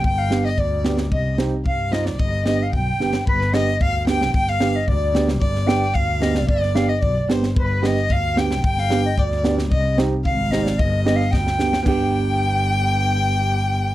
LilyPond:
<<
  \new Staff \with { instrumentName = "Flute" } { \time 2/4 \tempo 4 = 112 g''16 f''8 ees''16 d''8. r16 | ees''8 r8 f''8 ees''16 d''16 | ees''8 ees''16 f''16 g''4 | b'8 ees''8 f''8 g''8 |
g''16 f''8 ees''16 d''8. r16 | d''8 g''8 f''8 ees''16 d''16 | d''8 f''16 ees''16 d''4 | b'8 ees''8 f''8 g''8 |
g''16 f''8 ees''16 d''8. r16 | ees''8 r8 f''8 ees''16 d''16 | ees''8 ees''16 f''16 g''4 | g''2~ |
g''2 | }
  \new Staff \with { instrumentName = "Violin" } { \time 2/4 g''8. ees''16 d''8. r16 | ees''8 r8 f''8 ees''16 d''16 | ees''8 ees''8 g''4 | b'8 ees''8 f''8 g''8 |
g''16 f''8. d''8. r16 | d''4 f''4 | d''8. ees''16 d''8 c''8 | b'8 ees''8 f''8 g''8 |
g''4 d''8. r16 | ees''8 r8 f''4 | ees''4 g''4 | g''2~ |
g''2 | }
  \new Staff \with { instrumentName = "Upright piano" } { \time 2/4 r8 <b d' g'>16 r8. <b d' g'>16 r16 | r8 <c' ees' g'>16 r8. <c' ees' f'>16 r16 | r8 <b d' g'>16 r8. <b d' g'>16 r16 | r8 <b d' g'>16 r8. <b d' g'>16 r16 |
r8 <b d' g'>16 r8. <b d' g'>16 r16 | r8 <b d' g'>16 r8. <b d' g'>16 r16 | r8 <b d' g'>16 r8. <b d' g'>16 r16 | r8 <b d' g'>16 r8. <b d' g'>16 r16 |
r8 <b d' g'>16 r8. <b d' g'>16 r16 | r8 <c' ees' g'>16 r8. <c' ees' g'>16 r16 | r8 <b d' g'>16 r8. <b d' g'>16 r16 | <b d' g'>2~ |
<b d' g'>2 | }
  \new Staff \with { instrumentName = "Double bass" } { \clef bass \time 2/4 g,,4 d,4 | c,4 g,4 | g,,4 b,,8 g,,8 | g,,4 d,4 |
g,,4 d,4 | g,,4 d,4 | g,,4 b,,8 g,,8 | g,,4 d,4 |
g,,4 d,4 | c,4 aes,,4 | g,,4 d,4 | g,,2~ |
g,,2 | }
  \new DrumStaff \with { instrumentName = "Drums" } \drummode { \time 2/4 bd8 sn8 bd8 sn16 sn16 | bd8 sn8 bd8 sn16 sn16 | bd8 sn8 bd8 sn16 sn16 | bd16 sn16 sn8 bd8 sn16 sn16 |
bd16 sn16 sn8 bd8 sn16 sn16 | bd16 sn16 sn16 sn16 bd8 sn16 sn16 | bd16 sn16 sn8 bd8 sn16 sn16 | bd8 sn16 sn16 bd8 sn16 sn16 |
bd16 sn16 sn8 bd16 sn16 sn16 sn16 | bd8 sn8 bd8 sn16 sn16 | bd8 sn16 sn16 <bd sn>16 sn16 sn16 sn16 | <cymc bd>4 r4 |
r4 r4 | }
>>